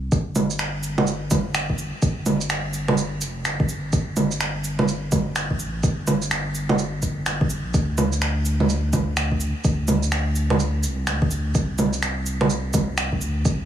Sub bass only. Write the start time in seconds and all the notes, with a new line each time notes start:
0.12 G1
2.02 G1
3.21 F1
3.45 G1
3.93 G1
5.60 A1
5.83 G1
7.64 A#1
7.74 D2
9.64 D2
10.83 C2
11.07 D2
11.55 C2
13.21 D2
13.45 C2